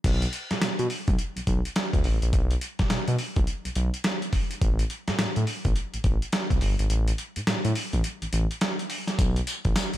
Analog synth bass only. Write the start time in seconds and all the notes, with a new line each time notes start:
0.04 B1
0.51 B2
0.61 B2
0.79 B2
1.08 B1
1.36 B1
1.47 B1
1.94 D2
2.04 A1
2.22 A#1
2.33 B1
2.79 B2
2.90 B2
3.08 B2
3.37 B1
3.65 B1
3.76 B1
4.62 A1
5.08 A2
5.19 A2
5.37 A2
5.65 A1
5.94 A1
6.04 A1
6.50 C2
6.62 G1
6.79 G#1
6.90 A1
7.36 A2
7.47 A2
7.65 A2
7.93 A1
8.22 A1
8.33 A1
9.19 B1
9.65 A1
9.94 B1